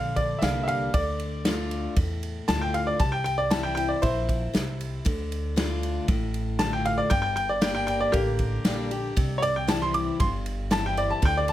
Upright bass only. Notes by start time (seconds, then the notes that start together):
Already playing: A#1
0.42 C2
0.94 D2
1.97 E2
2.48 D2
3.00 C2
4.03 A#1
4.54 C2
5.06 D2
6.08 A1
7.11 G1
8.14 A1
8.65 A#1
9.17 C2
10.20 G1
11.23 D2